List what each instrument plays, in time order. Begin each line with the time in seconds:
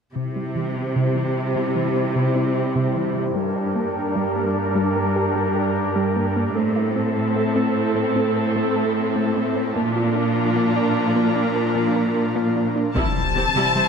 0.16 cello section C3, synth pluck C3, analog synth pad G3 E4 G4 C5, viola section E4 G4
0.36 synth pluck G3
0.56 synth pluck E3
0.96 synth pluck C3
1.16 synth pluck E3
1.56 synth pluck C3
1.76 synth pluck E3
1.96 synth pluck C4
2.16 synth pluck C3
2.35 synth pluck C4
2.76 synth pluck C3
2.95 synth pluck E3
3.15 synth pluck E3
3.36 cello section G2, synth pluck G3, analog synth pad D4 A#4, viola section D4 A#4
3.56 synth pluck D4
3.76 synth pluck A#3
4.16 synth pluck G3
4.36 synth pluck A#3
4.75 synth pluck G3
4.96 synth pluck A#3
5.16 synth pluck G4
5.36 synth pluck G3
5.56 synth pluck G4
5.96 synth pluck G3
6.16 synth pluck A#3
6.36 synth pluck A#3
6.56 cello section A2, synth pluck A3, analog synth pad A3 C4 E4 A4, viola section C4 A4
6.76 synth pluck E4
6.96 synth pluck C4
7.36 synth pluck A3
7.56 synth pluck C4
7.96 synth pluck A3
8.16 synth pluck C4
8.36 synth pluck A4
8.56 synth pluck A3
8.76 synth pluck A4
9.16 synth pluck A3
9.36 synth pluck C4
9.56 synth pluck C4
9.76 cello section A#2, analog synth pad F3 D4 F4 A#4, synth pluck A#3, viola section D4 F4
9.96 synth pluck F4
10.16 synth pluck D4
10.56 synth pluck A#3
10.76 synth pluck D4
11.16 synth pluck A#3
11.36 synth pluck D4
11.56 synth pluck A#4
11.76 synth pluck A#3
11.96 synth pluck A#4
12.36 synth pluck A#3
12.56 synth pluck D4
12.76 synth pluck D4
12.96 synth pluck C3, cello section C3, analog synth pad E3 C4 G4 C5, viola section G3 E4, violin section A5, impact
13.35 cello section C3, synth pluck E3, viola section C4 G4
13.56 cello section C3, synth pluck C3, viola section G3 E4
13.76 cello section C3, synth pluck G3, viola section E4 C5